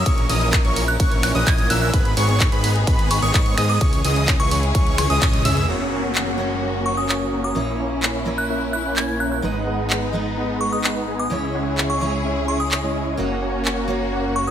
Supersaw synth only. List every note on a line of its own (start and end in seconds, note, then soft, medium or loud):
0.06 0.26 E3 medium
0.06 0.26 A#3 medium
0.06 0.26 C#4 medium
0.06 0.26 A#4 medium
0.06 0.26 C#5 medium
0.29 0.62 E3 loud
0.29 0.62 A#3 medium
0.29 0.62 C#4 medium
0.29 0.62 A#4 medium
0.29 0.62 D#5 loud
0.65 0.82 E3 medium
0.65 0.82 A#3 medium
0.65 0.82 C#4 medium
0.65 0.82 A#4 medium
0.65 0.82 C#5 medium
1.00 1.32 E3 medium
1.00 1.32 A#3 medium
1.00 1.32 C#4 medium
1.00 1.32 A#4 medium
1.00 1.32 C#5 medium
1.35 1.44 E3 medium
1.35 1.44 A#3 medium
1.35 1.44 C#4 medium
1.35 1.44 A#4 medium
1.35 1.44 D#5 loud
1.47 1.67 E3 loud
1.47 1.67 A#3 medium
1.47 1.67 C#4 medium
1.47 1.67 A#4 medium
1.47 1.67 D#5 loud
1.70 1.91 E3 loud
1.70 1.91 A#3 medium
1.70 1.91 C#4 medium
1.70 1.91 A#4 medium
1.70 1.91 E5 loud
1.94 2.13 D#3 medium
1.94 2.13 G#3 medium
1.94 2.13 B3 medium
1.94 2.13 G#4 medium
1.94 2.13 B4 medium
2.17 2.49 D#3 medium
2.17 2.49 G#3 medium
2.17 2.49 B3 medium
2.17 2.49 G#4 medium
2.17 2.49 C#5 loud
2.52 2.70 D#3 medium
2.52 2.70 G#3 medium
2.52 2.70 B3 medium
2.52 2.70 G#4 medium
2.52 2.70 B4 medium
2.87 3.20 D#3 medium
2.87 3.20 G#3 medium
2.87 3.20 B3 medium
2.87 3.20 G#4 medium
2.87 3.20 B4 medium
3.22 3.31 D#3 loud
3.22 3.31 G#3 medium
3.22 3.31 B3 medium
3.22 3.31 G#4 medium
3.22 3.31 C#5 loud
3.34 3.55 D#3 medium
3.34 3.55 G#3 medium
3.34 3.55 B3 medium
3.34 3.55 G#4 medium
3.34 3.55 C#5 loud
3.58 3.78 D#3 loud
3.58 3.78 G#3 medium
3.58 3.78 B3 medium
3.58 3.78 G#4 medium
3.58 3.78 D#5 loud
3.81 4.01 E3 medium
3.81 4.01 G#3 medium
3.81 4.01 C#4 medium
3.81 4.01 G#4 medium
3.81 4.01 C#5 medium
4.04 4.37 E3 medium
4.04 4.37 G#3 medium
4.04 4.37 C#4 medium
4.04 4.37 G#4 medium
4.04 4.37 D#5 loud
4.40 4.57 E3 medium
4.40 4.57 G#3 medium
4.40 4.57 C#4 medium
4.40 4.57 G#4 medium
4.40 4.57 C#5 medium
4.75 5.07 E3 medium
4.75 5.07 G#3 medium
4.75 5.07 C#4 medium
4.75 5.07 G#4 medium
4.75 5.07 C#5 medium
5.10 5.19 E3 medium
5.10 5.19 G#3 medium
5.10 5.19 C#4 medium
5.10 5.19 G#4 medium
5.10 5.19 D#5 loud
5.22 5.42 E3 loud
5.22 5.42 G#3 medium
5.22 5.42 C#4 medium
5.22 5.42 G#4 medium
5.22 5.42 D#5 loud
5.45 5.66 E3 loud
5.45 5.66 G#3 medium
5.45 5.66 C#4 medium
5.45 5.66 G#4 medium
5.45 5.66 E5 loud
5.69 5.88 A#3 medium
5.69 5.88 C#4 medium
5.69 5.88 F#4 medium
5.69 5.88 C#5 medium
5.69 5.88 F#5 medium
5.92 6.24 A#3 medium
5.92 6.24 C#4 medium
5.92 6.24 F#4 medium
5.92 6.24 C#5 medium
5.92 6.24 G#5 loud
6.27 6.45 A#3 medium
6.27 6.45 C#4 medium
6.27 6.45 F#4 medium
6.27 6.45 C#5 medium
6.27 6.45 F#5 medium
6.62 6.95 A#3 medium
6.62 6.95 C#4 medium
6.62 6.95 F#4 medium
6.62 6.95 C#5 medium
6.62 6.95 F#5 medium
6.97 7.06 A#3 medium
6.97 7.06 C#4 medium
6.97 7.06 F#4 medium
6.97 7.06 C#5 medium
6.97 7.06 G#5 loud
7.09 7.30 A#3 medium
7.09 7.30 C#4 medium
7.09 7.30 F#4 medium
7.09 7.30 C#5 medium
7.09 7.30 G#5 loud
7.33 7.53 A#3 medium
7.33 7.53 C#4 medium
7.33 7.53 F#4 medium
7.33 7.53 C#5 medium
7.33 7.53 A#5 loud
7.56 7.76 A#3 medium
7.56 7.76 C#4 medium
7.56 7.76 E4 medium
7.56 7.76 C#5 medium
7.56 7.76 E5 medium
7.79 8.12 A#3 medium
7.79 8.12 C#4 medium
7.79 8.12 E4 medium
7.79 8.12 C#5 medium
7.79 8.12 G#5 loud
8.15 8.32 A#3 medium
8.15 8.32 C#4 medium
8.15 8.32 E4 medium
8.15 8.32 C#5 medium
8.15 8.32 E5 medium
8.50 8.82 A#3 medium
8.50 8.82 C#4 medium
8.50 8.82 E4 medium
8.50 8.82 C#5 medium
8.50 8.82 E5 medium
8.85 8.94 A#3 medium
8.85 8.94 C#4 medium
8.85 8.94 E4 medium
8.85 8.94 C#5 medium
8.85 8.94 G#5 medium
8.97 9.17 A#3 medium
8.97 9.17 C#4 medium
8.97 9.17 E4 medium
8.97 9.17 C#5 medium
8.97 9.17 G#5 loud
9.20 9.41 A#3 medium
9.20 9.41 C#4 medium
9.20 9.41 E4 medium
9.20 9.41 C#5 medium
9.20 9.41 A#5 loud
9.44 9.63 G#3 medium
9.44 9.63 B3 medium
9.44 9.63 D#4 medium
9.44 9.63 B4 medium
9.44 9.63 D#5 medium
9.67 9.99 G#3 medium
9.67 9.99 B3 medium
9.67 9.99 D#4 medium
9.67 9.99 B4 medium
9.67 9.99 F#5 loud
10.02 10.20 G#3 medium
10.02 10.20 B3 medium
10.02 10.20 D#4 medium
10.02 10.20 B4 medium
10.02 10.20 D#5 medium
10.37 10.70 G#3 medium
10.37 10.70 B3 medium
10.37 10.70 D#4 medium
10.37 10.70 B4 medium
10.37 10.70 D#5 medium
10.72 10.81 G#3 medium
10.72 10.81 B3 medium
10.72 10.81 D#4 medium
10.72 10.81 B4 medium
10.72 10.81 F#5 medium
10.84 11.05 G#3 medium
10.84 11.05 B3 medium
10.84 11.05 D#4 medium
10.84 11.05 B4 medium
10.84 11.05 F#5 loud
11.08 11.28 G#3 medium
11.08 11.28 B3 medium
11.08 11.28 D#4 medium
11.08 11.28 B4 medium
11.08 11.28 G#5 loud
11.31 11.51 G#3 medium
11.31 11.51 C#4 medium
11.31 11.51 E4 medium
11.31 11.51 C#5 medium
11.31 11.51 E5 medium
11.54 11.87 G#3 medium
11.54 11.87 C#4 medium
11.54 11.87 E4 medium
11.54 11.87 C#5 medium
11.54 11.87 F#5 loud
11.90 12.07 G#3 medium
11.90 12.07 C#4 medium
11.90 12.07 E4 medium
11.90 12.07 C#5 medium
11.90 12.07 E5 medium
12.25 12.57 G#3 medium
12.25 12.57 C#4 medium
12.25 12.57 E4 medium
12.25 12.57 C#5 medium
12.25 12.57 E5 medium
12.83 13.16 G#3 medium
12.83 13.16 C#4 medium
12.83 13.16 E4 medium
12.83 13.16 C#5 medium
12.83 13.16 D#5 medium
13.19 13.39 A#3 medium
13.19 13.39 C#4 medium
13.19 13.38 F#4 medium
13.19 13.39 C#5 medium
13.19 13.39 F#5 medium
13.42 13.74 A#3 medium
13.42 13.74 C#4 medium
13.42 13.74 F#4 medium
13.42 13.74 C#5 medium
13.42 13.74 G#5 loud
13.77 13.95 A#3 medium
13.77 13.95 C#4 medium
13.77 13.95 F#4 medium
13.77 13.95 C#5 medium
13.77 13.95 F#5 medium
14.12 14.45 A#3 medium
14.12 14.45 C#4 medium
14.12 14.45 F#4 medium
14.12 14.45 C#5 medium
14.12 14.45 F#5 medium
14.47 14.51 A#3 medium
14.47 14.51 C#4 medium
14.47 14.51 F#4 medium
14.47 14.51 C#5 medium
14.47 14.51 G#5 loud